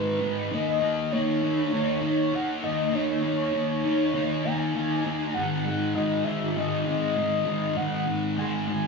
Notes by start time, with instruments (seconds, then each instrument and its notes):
Already playing: distorted electric guitar G#2 D#3 G#3, soft synth lead B4
0.20 distorted electric guitar D#3 G#3
0.51 distorted electric guitar D#3 A#3 D#4, soft synth lead D#5
0.80 distorted electric guitar A#3 D#4
1.12 distorted electric guitar D#3 A#3 D#4, soft synth lead C#5
1.42 distorted electric guitar A#3 D#4
1.72 distorted electric guitar D#3 A#3 D#4, soft synth lead C#5
2.01 distorted electric guitar A#3 D#4, soft synth lead C#5
2.33 distorted electric guitar D#3 A#3 D#4, soft synth lead F#5
2.63 distorted electric guitar A#3 D#4, soft synth lead D#5
2.92 distorted electric guitar D#3 A#3 D#4, soft synth lead C#5
3.22 distorted electric guitar A#3 D#4
3.51 distorted electric guitar D#3 A#3 D#4
3.84 distorted electric guitar A#3 D#4
4.14 distorted electric guitar D#3 A#3 D#4
4.44 distorted electric guitar A#3 D#4, soft synth lead G#5
4.74 distorted electric guitar D#3 A#3 D#4
5.04 distorted electric guitar A#3 D#4
5.34 distorted electric guitar G#2 D#3 G#3, soft synth lead F#5
5.66 distorted electric guitar D#3 G#3
5.95 distorted electric guitar G#2 D#3 G#3, soft synth lead D#5
6.24 distorted electric guitar D#3 G#3, soft synth lead E5
6.55 distorted electric guitar G#2 D#3 G#3, soft synth lead D#5
6.85 distorted electric guitar D#3 G#3, soft synth lead D#5
7.15 distorted electric guitar G#2 D#3 G#3
7.45 distorted electric guitar D#3 G#3
7.75 distorted electric guitar G#2 D#3 G#3, soft synth lead F#5
8.07 distorted electric guitar D#3 G#3
8.37 distorted electric guitar G#2 D#3 G#3, soft synth lead G#5
8.68 distorted electric guitar D#3 G#3, soft synth lead G#5